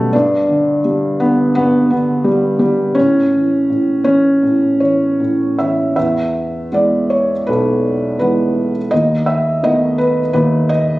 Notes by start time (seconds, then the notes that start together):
Already playing: D2 B2 D3 F#3 G3 A3 B3 C#4 D4
0.13 G2 D4
0.49 D3
0.85 G3
1.20 D3 B3
1.55 G2 B3
1.90 D3 B3
2.24 G3
2.59 G3
2.64 D3
2.95 A2 C#4
3.35 E3
3.70 A2
4.04 E3 C#4
4.43 A2
4.80 E3 C#5
5.20 A2
5.59 E3 E5
5.96 E2 E5
6.72 E3 G#3 B3 D5
7.10 C#5
7.47 B1 B4
8.19 E3 G#3 B3 B4
8.91 D#2 D#5
9.26 E5
9.63 D#3 A3 B3 D#5
9.98 B4
10.33 D#2 B4
10.69 D#5